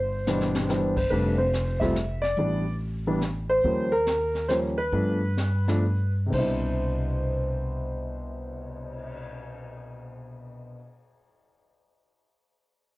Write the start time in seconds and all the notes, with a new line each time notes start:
Already playing: G1 C5
0.27 B2 E3 G3 D4, snare, hi-hat pedal
0.41 snare
0.55 snare
0.69 E3 G3 B3 D4, snare
0.97 C5, kick, crash
1.10 F1 G3 A3 C4 D4 B4, brush sweep, kick
1.38 C5
1.53 snare, hi-hat pedal
1.80 G3 A3 C4 F4 E5, kick, snare
1.95 snare, hi-hat pedal
2.21 D5, snare
2.37 A1 E3 G3 B3 D4, brush sweep, kick
3.07 E3 G3 B3 D4
3.22 snare, hi-hat pedal
3.50 C5
3.64 D#2 F3 G3 A#3 C#4, brush sweep, kick
3.92 A#4
4.07 snare, hi-hat pedal
4.35 snare
4.48 F3 G3 A#3 C#4 C5, snare, hi-hat pedal
4.77 B4
4.92 G2 F3 A3 B3 D4, brush sweep, kick
5.37 snare, hi-hat pedal
5.67 F3 A3 B3 D4, snare
6.26 B2 C3
6.32 C2 D4 C5, kick, crash
6.38 E4
6.65 cymbal swell